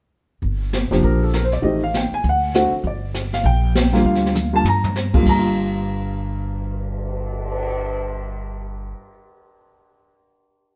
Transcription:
0.42 0.88 G1 medium
0.42 brush sweep soft
0.42 kick soft
0.73 snare medium
0.73 hi-hat pedal medium
0.91 1.02 F1 medium
0.91 1.31 F3 medium
0.91 1.31 A#3 medium
0.91 1.31 D4 medium
0.91 1.31 G4 medium
0.91 snare soft
1.03 1.60 A#1 medium
1.03 1.22 A#4 medium
1.03 brush sweep soft
1.03 kick soft
1.23 1.34 A4 medium
1.34 1.44 A#4 medium
1.34 snare medium
1.34 hi-hat pedal medium
1.44 1.54 C5 medium
1.52 1.63 D5 medium
1.52 snare soft
1.62 2.08 A1 medium
1.62 1.80 D#3 medium
1.62 1.80 A3 medium
1.62 1.80 C4 medium
1.62 1.80 G4 medium
1.62 1.81 D#5 medium
1.62 brush sweep soft
1.62 kick soft
1.83 1.94 F5 medium
1.94 2.13 G5 medium
1.94 snare medium
1.94 hi-hat pedal soft
2.12 2.24 G#5 medium
2.12 muted upright bass stroke soft
2.24 2.69 D2 medium
2.24 brush sweep medium
2.24 kick soft
2.29 2.55 F#5 medium
2.54 2.71 D3 medium
2.54 2.71 A3 medium
2.54 2.72 C4 medium
2.54 2.72 F#4 medium
2.54 snare medium
2.54 hi-hat pedal medium
2.72 muted upright bass stroke soft
2.84 3.41 G1 medium
2.84 3.31 D5 medium
2.84 brush sweep soft
2.84 kick soft
3.14 snare medium
3.14 hi-hat pedal medium
3.33 3.45 F5 medium
3.33 snare soft
3.44 4.01 A#1 medium
3.44 3.91 G5 medium
3.44 brush sweep soft
3.44 kick soft
3.75 snare medium
3.75 hi-hat pedal medium
3.93 4.32 D3 medium
3.93 4.33 G3 medium
3.93 4.33 A#3 medium
3.93 4.33 F4 medium
3.93 snare soft
4.05 4.62 D2 medium
4.05 4.51 F5 medium
4.05 brush sweep soft
4.05 kick soft
4.15 snare soft
4.26 snare soft
4.35 hi-hat pedal medium
4.35 mid tom soft
4.53 4.64 D3 medium
4.53 4.64 G3 medium
4.53 4.64 A#3 medium
4.53 4.64 F4 medium
4.53 4.66 A5 medium
4.64 5.22 G2 medium
4.64 floor tom medium
4.68 5.13 A#5 medium
4.84 floor tom medium
4.96 snare medium
4.96 hi-hat pedal medium
5.13 8.85 G2 medium
5.13 5.25 D3 medium
5.13 5.21 G3 medium
5.13 5.25 A#3 medium
5.13 5.25 F4 medium
5.13 kick medium
5.13 crash medium
5.22 8.92 G1 medium
5.22 8.93 G3 medium
5.22 kick medium
5.22 crash medium
5.29 9.01 A#3 medium
5.29 8.96 A#5 medium
5.39 9.09 F4 medium
5.44 cymbal swell soft

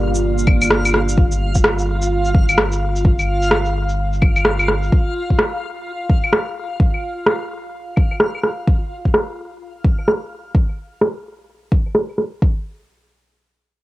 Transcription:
0.00 4.90 G1 medium
0.00 1.14 A#3 medium
0.00 1.14 F4 medium
0.00 8.68 F4 medium
0.00 1.14 G4 medium
0.00 1.14 D5 medium
0.00 8.68 F5 medium
0.15 shaker medium
0.38 shaker soft
0.47 kick loud
0.47 claves medium
0.62 claves medium
0.62 shaker medium
0.70 cross-stick loud
0.85 claves medium
0.85 shaker soft
0.94 cross-stick medium
1.09 shaker medium
1.18 kick loud
1.32 shaker soft
1.55 kick medium
1.55 shaker medium
1.64 cross-stick loud
1.79 shaker soft
2.02 shaker medium
2.25 shaker soft
2.35 kick loud
2.49 claves medium
2.49 shaker medium
2.58 cross-stick loud
2.72 shaker soft
2.96 shaker medium
3.05 kick loud
3.19 claves soft
3.19 shaker soft
3.42 shaker medium
3.51 cross-stick loud
3.65 shaker soft
3.89 shaker medium
4.13 shaker soft
4.22 kick loud
4.22 claves soft
4.36 claves medium
4.36 shaker medium
4.45 cross-stick loud
4.59 claves medium
4.59 shaker soft
4.68 cross-stick medium
4.83 shaker soft
4.92 kick loud
5.30 kick medium
5.39 cross-stick loud
6.10 kick loud
6.24 claves medium
6.33 cross-stick loud
6.80 kick loud
6.94 claves soft
7.26 cross-stick loud
7.96 kick loud
7.96 claves soft
8.11 claves medium
8.20 cross-stick medium
8.35 claves medium
8.43 cross-stick medium
8.67 kick loud
9.05 kick medium
9.14 cross-stick medium
9.85 kick medium
9.98 claves medium
10.08 cross-stick medium
10.55 kick loud
10.69 claves soft
11.01 cross-stick medium
11.72 kick medium
11.72 claves soft
11.86 claves medium
11.95 cross-stick medium
12.09 claves medium
12.18 cross-stick medium
12.42 kick loud

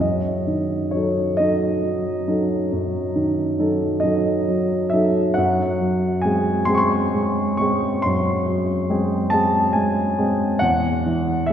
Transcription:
0.00 2.66 F#2 soft
0.00 0.92 D#5 soft
0.47 1.20 D#3 soft
0.91 1.36 F#3 soft
0.91 1.36 D#4 soft
0.91 1.38 C#5 soft
0.96 1.36 A4 soft
1.37 1.81 F#3 soft
1.37 1.81 D#4 soft
1.37 3.98 D#5 medium
1.41 1.81 A4 soft
1.83 2.26 F#3 soft
2.28 2.67 F#3 soft
2.28 2.68 D#4 soft
2.28 2.68 A4 soft
2.72 5.34 F#2 soft
3.16 3.86 D#3 soft
3.59 3.99 F#3 soft
3.59 4.00 D#4 soft
3.59 4.00 A4 soft
4.00 4.45 F#3 soft
4.00 4.45 D#4 soft
4.00 4.45 A4 soft
4.00 4.92 D#5 medium
4.48 4.91 F#3 soft
4.90 5.33 F#3 soft
4.90 5.34 D#4 soft
4.90 5.36 E5 medium
4.94 5.34 A4 soft
5.34 8.00 F#2 soft
5.34 6.23 F#5 medium
5.81 6.51 F#3 soft
6.22 6.65 G#3 soft
6.22 6.66 C4 soft
6.22 6.66 G#4 soft
6.22 6.68 G#5 medium
6.65 7.10 G#3 soft
6.65 7.11 C4 soft
6.65 7.11 G#4 soft
6.65 6.74 C6 medium
6.74 7.58 C6 medium
6.74 6.82 C#6 medium
7.14 7.58 G#3 soft
7.57 8.00 G#3 soft
7.57 8.00 C4 soft
7.57 8.03 C#6 medium
7.62 8.01 G#4 soft
8.02 10.57 F#2 soft
8.02 9.32 C6 medium
8.47 9.15 F#3 soft
8.89 9.29 G#3 soft
8.89 9.29 C4 soft
8.89 9.29 G#4 soft
9.30 9.71 G#3 soft
9.30 9.72 C4 soft
9.30 9.72 G#4 soft
9.30 9.74 A5 medium
9.73 10.18 G#3 soft
9.73 10.59 G#5 medium
10.18 10.57 G#3 soft
10.18 10.57 C4 soft
10.18 10.57 G#4 soft
10.59 11.53 E2 medium
10.59 11.47 F#5 medium
11.06 11.53 E3 soft
11.46 11.53 E5 medium

